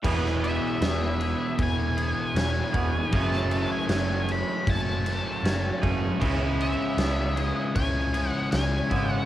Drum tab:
CC |x-x-x-x-x-x-x-x-|x-x-x-x-x-x-x-x-|x-x-x-x-x-x-x-x-|
SD |-o--o-------o---|-o--o-------o---|----o-------o---|
BD |o-------o-----o-|o-------o-----o-|o-------o-----o-|